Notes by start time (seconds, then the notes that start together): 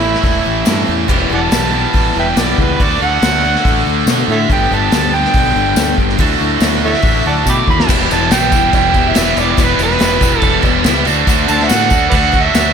Already playing: A1 A2 E3 A3 C#4 E4 A4 C#5
0.02 A2 E3 A3 C#4 E4
0.15 snare
0.23 E1 E3 A3 C#4 E4, kick, open hi-hat
0.44 A1 A3 C#4 E4
0.65 G2 A2 E3 A3 C#4 E4, snare, open hi-hat, tambourine
0.87 E2 A3 C#4 E4
1.08 E1 E2 B2 E3 G3 G#3 B3 C4 E4 F4 G4 C5, kick, crash
1.22 G3 B3 E4 B4
1.29 E1 E3 G3 B3 E4
1.34 D5 F#5 A5
1.51 B1 E2 B2 E3 G3 B3 E4, snare, open hi-hat, tambourine
1.71 E2 B2 E3 G3 B3 E4
1.93 A1 E3 G3 B3 E4, kick, open hi-hat
2.15 E1 G3 B3 E4
2.19 E3 B4 E5 G5
2.36 B1 E2 B2 E3 G3 B3 E4 D5, snare, open hi-hat, tambourine
2.58 C#2 E3 G3 E4 B4, kick
2.79 D2 D3 F#3 A3 D4 F#4 A4 D5, kick, open hi-hat
3.01 D2 A3 D4 F#4 F#5
3.22 D2 D3 A3 D4 F#4, snare, open hi-hat, tambourine
3.45 D3 A3 D4 F#4
3.55 snare
3.65 A1 D3 A3 D4 F#4, kick, open hi-hat
3.86 D2 A3 D4 F#4
4.06 B2 D3 A3 D4 F#4, snare, open hi-hat, tambourine
4.28 A2 D4 F#4 A4 C#5 E5
4.33 A3
4.48 G1 G2 D3 G3 B3 D4 G4 A4, kick, open hi-hat
4.52 G4 A4 G5
4.71 G1 B3 D4 A4 A5
4.92 D2 G3 B3 D4, snare, open hi-hat, tambourine
4.96 A4
5.12 D3 G3 B3 D4 G4 A4 G5
5.16 G2
5.25 snare
5.34 B1 G3 B3 D4 A4, kick, open hi-hat
5.56 G1 B3 D4 A4
5.76 D2 G3 B3 D4 A4, snare, open hi-hat, tambourine
5.98 G1 B3 D4 A4, kick
6.09 snare
6.18 D2 D3 F#3 A3 D4 E4 F#4 A4, kick, open hi-hat
6.40 D2 D4 E4
6.44 A3
6.61 D2 D3 F#3 A3 D4 E4, snare, open hi-hat, tambourine
6.81 D3 F#3 E4 F#4 A4 C#5 E5
6.86 A3 D4
6.94 snare
7.02 A1 F#3, kick, open hi-hat
7.07 A3 D4 E4
7.26 D2 A3 E4 D5 F#5 A5
7.46 B2 D3 F#3 A3 D4 E4 G5 B5 D6, kick, tambourine
7.67 D#2 A3 D4 E4 B5, kick
7.80 snare
7.87 E1 E2 B2 E3 G3 B3 E4 B4, kick, crash, tambourine
7.92 G4
8.10 E1 E3 G3 B3 E4 A5, tambourine, crash
8.31 B1 E2 B2 E3 G3 B3 E4 G5, snare, tambourine, crash
8.42 snare
8.52 E1 G3 B3 E4, kick, tambourine, crash
8.56 E3
8.73 E1 E3 G3 B3 E4 G5, kick, tambourine, crash
8.93 B2 G3 B3 E4 G4, kick, tambourine, crash
8.97 E2 E3
9.10 E5
9.14 E1 E2 B2 E3 G3 B3 E4, snare, tambourine, crash
9.18 G4
9.34 E1 E3 G3 B3 E4, tambourine, crash
9.41 D5
9.57 E1 E2 B2 E3 G3 B3 E4 G4, kick, tambourine, crash
9.63 B4
9.79 E1 E3 G3 B3 E4, tambourine, crash
9.83 B4
9.91 snare
9.99 E1 E2 B2 E3 G3 B3 E4, snare, tambourine, crash
10.11 snare
10.20 E1 E3 G3 B3 E4, kick, tambourine, crash
10.40 E1 E3 G3 A4, kick, tambourine, crash
10.44 B3 E4
10.62 E1 B2 E3 G3 B3 E4 G4, kick, tambourine, crash
10.66 E2
10.84 C#2 E2 B2 E3 G3 B3 E4 G4, snare, tambourine, crash
11.05 D2 D3 A3 D4 F#4 D5, tambourine, crash
11.27 D2 D3 A3 D4 F#4, kick, tambourine, crash
11.48 D2 D4 F#4 A5, tambourine, crash
11.53 A3
11.60 E5, snare
11.68 A2 D3 A3 D4 F#4 F#5, snare, tambourine, crash
11.81 snare
11.90 D2 A3 D4 F#4, kick, tambourine, crash
12.09 D2 D3 A3 B4 D5 F#5, kick, tambourine, crash
12.14 D4 F#4
12.32 D3 A3 D4 F#4, kick, tambourine, crash
12.43 E5
12.54 D2 D3 A3 D4 F#4, snare, tambourine, crash